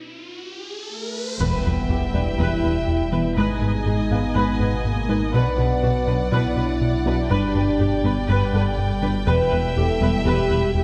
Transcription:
Already playing: riser
0.91 french horn section A3
1.40 sub bass E1, double bass section E1, analog synth bass E2, cello section E2, analog synth pad B2 G3 E4, synth pluck E3, french horn section B3, viola section B4, violin section E5 G5, impact
1.65 double bass section E1, analog synth bass E2, cello section E2, synth pluck E4, viola section B4
1.89 double bass section E1, analog synth bass E2, cello section E2, synth pluck E4, viola section G4
2.14 double bass section E1, analog synth bass E2, cello section E2, synth pluck G3, grand piano D4 D5, viola section B4
2.38 double bass section E1, analog synth bass E2, cello section E2, synth pluck E3, french horn section E4, viola section B4
2.63 double bass section E1, analog synth bass E2, cello section E2, synth pluck E4, viola section B4
2.87 analog synth bass E2
3.12 double bass section E1, cello section E2, analog synth bass E3, synth pluck B3, viola section B4, grand piano B4
3.36 double bass section G#1, sub bass G#1, analog synth bass G#2, cello section G#2, analog synth pad G#3 D#4, synth pluck G#3, french horn section D#4, viola section B4, violin section D#5 G#5
3.62 double bass section G#1, cello section G#2, analog synth bass G#2, synth pluck G#4, viola section B4
3.86 double bass section G#1, analog synth bass G#2, cello section G#2, synth pluck G#4, viola section G#4
4.11 double bass section G#1, cello section G#2, analog synth bass G#2, synth pluck B3, viola section B4, grand piano F5
4.35 double bass section G#1, analog synth bass G#2, cello section G#2, synth pluck G#3, french horn section B3, viola section B4
4.60 double bass section G#1, cello section G#2, analog synth bass G#2, synth pluck G#4, viola section B4
4.85 analog synth bass G#2, french horn section A#3
5.09 double bass section G#1, cello section G#2, analog synth bass G#3, synth pluck D#4, viola section B4
5.33 sub bass B1, double bass section B1, analog synth bass B2, cello section B2, analog synth pad F#3 D4, synth pluck B3, french horn section B3, viola section B4, violin section D5 F#5
5.57 double bass section B1, cello section B2, analog synth bass B2, grand piano F#4 F#5, viola section B4, synth pluck B4
5.83 double bass section B1, cello section B2, analog synth bass B2, viola section F#4, synth pluck B4
6.07 double bass section B1, analog synth bass B2, cello section B2, synth pluck D4, viola section B4
6.32 double bass section B1, analog synth bass B2, cello section B2, synth pluck B3, french horn section E4, viola section B4
6.56 double bass section B1, analog synth bass B2, cello section B2, viola section B4
6.81 analog synth bass B2
7.06 double bass section B1, cello section B2, analog synth bass B3, synth pluck F#4, viola section B4
7.30 sub bass G1, double bass section G1, analog synth bass G2, cello section G2, analog synth pad B2 G3, synth pluck G3, french horn section D4, viola section B4, violin section G5
7.55 double bass section G1, cello section G2, analog synth bass G2, synth pluck G4, viola section B4
7.79 double bass section G1, analog synth bass G2, cello section G2, synth pluck G4, viola section G4
8.04 double bass section G1, analog synth bass G2, cello section G2, synth pluck B3, viola section B4
8.28 double bass section G1, analog synth bass G2, cello section G2, synth pluck G3, french horn section B3, viola section B4
8.53 double bass section G1, analog synth bass G2, cello section G2, synth pluck G4, grand piano A4 A5, viola section B4
8.78 analog synth bass G2
9.02 double bass section G1, cello section G2, analog synth bass G3, synth pluck D4, viola section B4
9.27 sub bass E1, double bass section E1, analog synth bass E2, cello section E2, synth pluck E3, analog synth pad E4, viola section B4, french horn section B4, violin section E5
9.51 double bass section E1, analog synth bass E2, cello section E2, grand piano B3 B4, synth pluck E4, viola section B4
9.76 double bass section E1, analog synth bass E2, cello section E2, synth pluck E4, viola section G4, french horn section A4
10.01 double bass section E1, cello section E2, analog synth bass E2, synth pluck G3, viola section B4
10.25 double bass section E1, analog synth bass E2, cello section E2, synth pluck E3, french horn section G4, viola section B4
10.50 double bass section E1, analog synth bass E2, cello section E2, synth pluck E4, viola section B4
10.75 analog synth bass E2, french horn section G4

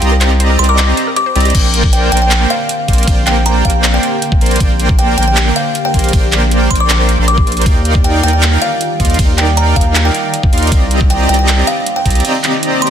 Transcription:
Already playing: kalimba G5
0.02 sub bass C2, supersaw synth C4 G4 D5 D#5 A#5, synth arpeggio sound G4, closed hi-hat
0.12 synth arpeggio sound A#4
0.21 synth arpeggio sound C5, clap, closed hi-hat
0.31 synth arpeggio sound D5
0.40 synth arpeggio sound C5, closed hi-hat
0.50 synth arpeggio sound A#4
0.59 sub bass C2, supersaw synth C4 G4 D5 D#5 A#5, synth arpeggio sound G4, kalimba C6, closed hi-hat
0.64 closed hi-hat
0.69 synth arpeggio sound A#4, kalimba D6
0.78 synth arpeggio sound C5, clap, closed hi-hat
0.88 synth arpeggio sound D5
0.97 synth arpeggio sound C5, closed hi-hat
1.07 synth arpeggio sound A#4
1.16 synth arpeggio sound G4, kalimba D6, closed hi-hat
1.26 synth arpeggio sound C5
1.35 sub bass C2, supersaw synth C4 G4 D5 D#5 A#5, synth arpeggio sound G4, closed hi-hat
1.40 closed hi-hat
1.45 synth arpeggio sound G4, closed hi-hat
1.50 closed hi-hat
1.55 sub bass A#1, ambient pad D3 A#3 C4 G4, supersaw synth A#3 A#4 C5 D5 G5, kick, closed hi-hat, crash, ride
1.74 closed hi-hat
1.84 kick
1.93 kalimba G5, closed hi-hat
2.12 sub bass A#1, supersaw synth A#3 A#4 C5 D5 G5, kalimba G5, closed hi-hat
2.17 closed hi-hat
2.22 kalimba G5
2.31 clap, closed hi-hat
2.50 kalimba F5, closed hi-hat
2.69 closed hi-hat
2.88 sub bass A#1, supersaw synth A#3 A#4 C5 D5 C6, kick, closed hi-hat
2.93 closed hi-hat
2.98 closed hi-hat
3.03 closed hi-hat
3.08 sub bass A#1, supersaw synth A#3 A#4 C5 D5 G5, kick, closed hi-hat, ride
3.27 kalimba G5, clap, closed hi-hat
3.46 kalimba A#5, closed hi-hat
3.65 sub bass A#1, supersaw synth A#3 A#4 D5 G5, kalimba F5, kick, closed hi-hat
3.70 closed hi-hat
3.84 clap, closed hi-hat
3.94 kalimba G5
4.03 closed hi-hat
4.22 closed hi-hat
4.32 kick
4.41 sub bass A#1, supersaw synth A#3 A#4 C5 D5 C6, closed hi-hat
4.46 closed hi-hat
4.51 closed hi-hat
4.56 closed hi-hat
4.60 sub bass A#1, supersaw synth A#4 D5 G5, ambient pad D5, kick, closed hi-hat, ride
4.80 closed hi-hat
4.89 kick
4.99 kalimba G5, closed hi-hat
5.18 sub bass A#1, supersaw synth A#3 A#4 C5 D5 G5, kalimba G5, closed hi-hat
5.23 closed hi-hat
5.28 kalimba G5
5.37 clap, closed hi-hat
5.56 kalimba F5, closed hi-hat
5.75 closed hi-hat
5.85 kalimba G5
5.94 sub bass A#1, supersaw synth A#3 A#4 C5 D5 C6, kick, closed hi-hat
5.99 closed hi-hat
6.04 closed hi-hat
6.09 closed hi-hat
6.13 sub bass A#1, supersaw synth A#3 A#4 C5 D5 G5, kick, closed hi-hat, ride
6.32 clap, closed hi-hat
6.51 closed hi-hat
6.71 sub bass A#1, supersaw synth A#3 C5 D5, kalimba C6, kick, closed hi-hat
6.75 closed hi-hat
6.80 kalimba D6
6.90 clap, closed hi-hat
7.09 closed hi-hat
7.19 sub bass A#1, supersaw synth A#3 A#4 C5 D5 C6
7.28 kalimba D6, closed hi-hat
7.38 kick
7.47 closed hi-hat
7.52 closed hi-hat
7.57 closed hi-hat
7.61 closed hi-hat
7.66 sub bass D#2, ambient pad D#3 G3 F4, supersaw synth D#4 A#4 D5 F5 G5, kick, closed hi-hat, ride
7.85 closed hi-hat
7.95 kick
8.04 kalimba G5, closed hi-hat
8.23 sub bass D#2, supersaw synth D#4 A#4 D5 F5 G5, kalimba G5, closed hi-hat
8.28 closed hi-hat
8.33 kalimba G5
8.43 clap, closed hi-hat
8.62 kalimba F5, closed hi-hat
8.81 closed hi-hat
9.00 sub bass D#2, supersaw synth D#4 A#4 D5 F5 C6, kick, closed hi-hat
9.05 closed hi-hat
9.10 closed hi-hat
9.14 closed hi-hat
9.19 sub bass D#2, supersaw synth D#4 A#4 D5 F5 G5, kick, closed hi-hat, ride
9.38 kalimba G5, clap, closed hi-hat
9.57 kalimba A#5, closed hi-hat
9.76 sub bass D#2, supersaw synth D#4 A#4 D5 G5, kalimba F5, kick, closed hi-hat
9.81 closed hi-hat
9.95 clap, closed hi-hat
10.05 kalimba G5
10.15 closed hi-hat
10.34 closed hi-hat
10.43 kick
10.53 sub bass D#2, supersaw synth D#4 A#4 D5 F5 C6, closed hi-hat
10.58 closed hi-hat
10.63 closed hi-hat
10.67 closed hi-hat
10.72 sub bass C2, ambient pad D#3 A#3 C4 D#4, supersaw synth C4 G4 D5 D#5 A#5, kick, closed hi-hat, ride
10.91 closed hi-hat
11.01 kick
11.10 kalimba G5, closed hi-hat
11.29 sub bass C2, supersaw synth C4 G4 D5 D#5 A#5, kalimba G5, closed hi-hat
11.34 closed hi-hat
11.39 kalimba G5
11.48 clap, closed hi-hat
11.67 kalimba F5, closed hi-hat
11.86 closed hi-hat
11.96 kalimba G5
12.06 sub bass C2, supersaw synth C4 G4 D5 D#5 A#5, kick, closed hi-hat
12.10 closed hi-hat
12.15 closed hi-hat
12.20 closed hi-hat
12.25 supersaw synth C4 G4 D5 D#5 A#5, closed hi-hat, ride
12.44 clap, closed hi-hat
12.63 closed hi-hat
12.82 supersaw synth C4 G4 D5 D#5 A#5, kalimba C6, closed hi-hat
12.87 closed hi-hat

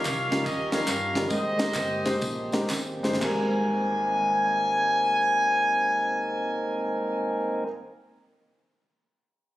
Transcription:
Already playing: grand piano D#3, tonewheel organ D#3 G3 C#4 F4, horn section F4 G4 A#4 C#5 F5
0.05 fingered electric bass C2, kick, clap, ride, tambourine
0.31 fingered electric bass C#2, grand piano G3 C#4 D#4 F4 A#4, kick, snare, ride, tambourine
0.44 fingered electric bass D#2, horn section G4 A#4 D#5, kick, ride, tambourine
0.71 grand piano G3 C#4 D#4 F4 A#4, horn section A#4 C#5 F5, snare, ride, tambourine
0.87 fingered electric bass G2, clap, ride, tambourine
1.15 fingered electric bass G1, grand piano G3 C#4 D#4 F4 A#4, kick, snare, ride, tambourine
1.29 fingered electric bass G#1, grand piano G#2, tonewheel organ G#3 A#3 C4 G4, horn section G4 C5 D#5, kick, ride, tambourine
1.58 grand piano G#3 C4 D#4 G4 A#4, snare, ride, tambourine
1.74 fingered electric bass G1, kick, clap, ride, tambourine
2.05 grand piano G#3 C4 D#4 G4 C5, kick, snare, ride, tambourine
2.21 fingered electric bass A#1, kick, ride, tambourine
2.52 grand piano G#3 C4 D#4 G4 A#4, snare, ride, tambourine
2.69 fingered electric bass G#1, snare, clap, tambourine
3.03 fingered electric bass G1, grand piano G#3 C4 D#4 G4 C5, snare, tambourine
3.14 snare
3.19 grand piano G#1 G3 G#3 C4, tonewheel organ A#3 C4 D#4 A#4, kick, clap
3.23 fingered electric bass G#1, grand piano A#4, horn section G#5, crash

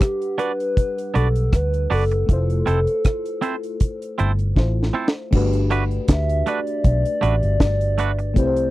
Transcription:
Already playing: fm electric piano G3 D4 B4 F#5, soft synth lead G4
0.01 kick, cross-stick, closed hi-hat
0.22 closed hi-hat
0.38 clean electric guitar D4 F#4 B4 D5, soft synth lead B4, closed hi-hat
0.60 closed hi-hat
0.77 kick, closed hi-hat
0.98 closed hi-hat
1.14 fingered electric bass B1, clean electric guitar D4 F#4 B4 D5, soft synth lead A4, closed hi-hat
1.35 closed hi-hat
1.53 fingered electric bass D2, soft synth lead B4, kick, cross-stick, closed hi-hat
1.74 closed hi-hat
1.90 fingered electric bass F#1, clean electric guitar D4 F#4 B4 D5, soft synth lead A4, open hi-hat
2.11 muted clean electric guitar stroke, closed hi-hat
2.26 fingered electric bass F1, fm electric piano A3 E4, kick, closed hi-hat
2.30 fm electric piano F4 C5
2.50 closed hi-hat
2.66 fingered electric bass F1, clean electric guitar C4 E4 A4 C5, closed hi-hat
2.87 closed hi-hat
3.05 kick, cross-stick, closed hi-hat
3.26 closed hi-hat
3.41 clean electric guitar C4 E4 A4 C5, closed hi-hat
3.63 closed hi-hat
3.80 kick, closed hi-hat
4.02 closed hi-hat
4.18 fingered electric bass G1, clean electric guitar C4 E4 A4 C5, closed hi-hat
4.39 closed hi-hat
4.56 fingered electric bass A1, fm electric piano A3 E4 F4 C5, kick, snare
4.83 snare
4.94 clean electric guitar C4 E4 A4 C5
5.08 snare
5.31 fingered electric bass G1, fm electric piano A3 D4 F#4, kick, crash
5.35 fm electric piano G4 B4
5.53 closed hi-hat
5.71 clean electric guitar A3 D4 F#4 B4, closed hi-hat
5.91 closed hi-hat
6.08 fingered electric bass D2, soft synth lead E5, kick, snare, closed hi-hat
6.30 closed hi-hat
6.47 clean electric guitar A3 D4 F#4 B4, soft synth lead D5, closed hi-hat
6.67 closed hi-hat
6.84 fingered electric bass B1, kick, closed hi-hat
7.05 closed hi-hat
7.21 fingered electric bass A1, clean electric guitar A3 D4 F#4 B4, closed hi-hat
7.43 fingered electric bass G1, closed hi-hat
7.60 fingered electric bass G1, kick, snare, closed hi-hat
7.81 closed hi-hat
7.98 clean electric guitar A3 D4 F#4 B4, closed hi-hat
8.19 muted clean electric guitar stroke, closed hi-hat
8.34 fingered electric bass C2, fm electric piano A3 C4 E4, kick, closed hi-hat
8.38 fm electric piano G4 B4, soft synth lead C5
8.47 fm electric piano C5
8.57 closed hi-hat

